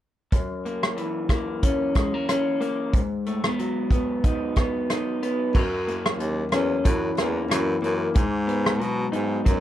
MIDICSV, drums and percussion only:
0, 0, Header, 1, 2, 480
1, 0, Start_track
1, 0, Tempo, 652884
1, 236, Time_signature, 4, 2, 24, 8
1, 7059, End_track
2, 0, Start_track
2, 0, Title_t, "Drums"
2, 236, Note_on_c, 9, 42, 49
2, 238, Note_on_c, 9, 36, 89
2, 310, Note_off_c, 9, 42, 0
2, 311, Note_off_c, 9, 36, 0
2, 483, Note_on_c, 9, 42, 38
2, 557, Note_off_c, 9, 42, 0
2, 611, Note_on_c, 9, 37, 81
2, 685, Note_off_c, 9, 37, 0
2, 717, Note_on_c, 9, 42, 53
2, 791, Note_off_c, 9, 42, 0
2, 950, Note_on_c, 9, 36, 74
2, 953, Note_on_c, 9, 42, 42
2, 956, Note_on_c, 9, 37, 76
2, 1024, Note_off_c, 9, 36, 0
2, 1026, Note_off_c, 9, 42, 0
2, 1029, Note_off_c, 9, 37, 0
2, 1198, Note_on_c, 9, 36, 83
2, 1198, Note_on_c, 9, 42, 57
2, 1271, Note_off_c, 9, 42, 0
2, 1272, Note_off_c, 9, 36, 0
2, 1433, Note_on_c, 9, 42, 48
2, 1437, Note_on_c, 9, 36, 73
2, 1442, Note_on_c, 9, 37, 72
2, 1506, Note_off_c, 9, 42, 0
2, 1511, Note_off_c, 9, 36, 0
2, 1515, Note_off_c, 9, 37, 0
2, 1681, Note_on_c, 9, 42, 67
2, 1682, Note_on_c, 9, 37, 78
2, 1755, Note_off_c, 9, 42, 0
2, 1756, Note_off_c, 9, 37, 0
2, 1921, Note_on_c, 9, 42, 46
2, 1995, Note_off_c, 9, 42, 0
2, 2157, Note_on_c, 9, 42, 51
2, 2158, Note_on_c, 9, 36, 91
2, 2231, Note_off_c, 9, 36, 0
2, 2231, Note_off_c, 9, 42, 0
2, 2399, Note_on_c, 9, 42, 42
2, 2472, Note_off_c, 9, 42, 0
2, 2528, Note_on_c, 9, 37, 84
2, 2602, Note_off_c, 9, 37, 0
2, 2641, Note_on_c, 9, 42, 52
2, 2715, Note_off_c, 9, 42, 0
2, 2871, Note_on_c, 9, 36, 76
2, 2877, Note_on_c, 9, 42, 42
2, 2945, Note_off_c, 9, 36, 0
2, 2950, Note_off_c, 9, 42, 0
2, 3117, Note_on_c, 9, 36, 82
2, 3117, Note_on_c, 9, 42, 56
2, 3190, Note_off_c, 9, 42, 0
2, 3191, Note_off_c, 9, 36, 0
2, 3350, Note_on_c, 9, 42, 45
2, 3357, Note_on_c, 9, 36, 77
2, 3359, Note_on_c, 9, 37, 81
2, 3424, Note_off_c, 9, 42, 0
2, 3430, Note_off_c, 9, 36, 0
2, 3433, Note_off_c, 9, 37, 0
2, 3601, Note_on_c, 9, 42, 57
2, 3602, Note_on_c, 9, 37, 74
2, 3675, Note_off_c, 9, 42, 0
2, 3676, Note_off_c, 9, 37, 0
2, 3844, Note_on_c, 9, 42, 49
2, 3917, Note_off_c, 9, 42, 0
2, 4079, Note_on_c, 9, 36, 85
2, 4081, Note_on_c, 9, 49, 68
2, 4152, Note_off_c, 9, 36, 0
2, 4155, Note_off_c, 9, 49, 0
2, 4325, Note_on_c, 9, 42, 49
2, 4398, Note_off_c, 9, 42, 0
2, 4453, Note_on_c, 9, 37, 87
2, 4527, Note_off_c, 9, 37, 0
2, 4559, Note_on_c, 9, 42, 53
2, 4632, Note_off_c, 9, 42, 0
2, 4792, Note_on_c, 9, 42, 40
2, 4795, Note_on_c, 9, 37, 81
2, 4865, Note_off_c, 9, 42, 0
2, 4868, Note_off_c, 9, 37, 0
2, 5036, Note_on_c, 9, 42, 60
2, 5039, Note_on_c, 9, 36, 87
2, 5110, Note_off_c, 9, 42, 0
2, 5112, Note_off_c, 9, 36, 0
2, 5272, Note_on_c, 9, 42, 44
2, 5280, Note_on_c, 9, 37, 81
2, 5345, Note_off_c, 9, 42, 0
2, 5354, Note_off_c, 9, 37, 0
2, 5523, Note_on_c, 9, 42, 71
2, 5524, Note_on_c, 9, 37, 83
2, 5596, Note_off_c, 9, 42, 0
2, 5597, Note_off_c, 9, 37, 0
2, 5763, Note_on_c, 9, 42, 49
2, 5837, Note_off_c, 9, 42, 0
2, 5994, Note_on_c, 9, 42, 58
2, 5997, Note_on_c, 9, 36, 98
2, 6068, Note_off_c, 9, 42, 0
2, 6071, Note_off_c, 9, 36, 0
2, 6239, Note_on_c, 9, 42, 45
2, 6313, Note_off_c, 9, 42, 0
2, 6369, Note_on_c, 9, 37, 86
2, 6442, Note_off_c, 9, 37, 0
2, 6479, Note_on_c, 9, 42, 49
2, 6552, Note_off_c, 9, 42, 0
2, 6714, Note_on_c, 9, 42, 45
2, 6787, Note_off_c, 9, 42, 0
2, 6956, Note_on_c, 9, 36, 83
2, 6956, Note_on_c, 9, 42, 59
2, 7029, Note_off_c, 9, 42, 0
2, 7030, Note_off_c, 9, 36, 0
2, 7059, End_track
0, 0, End_of_file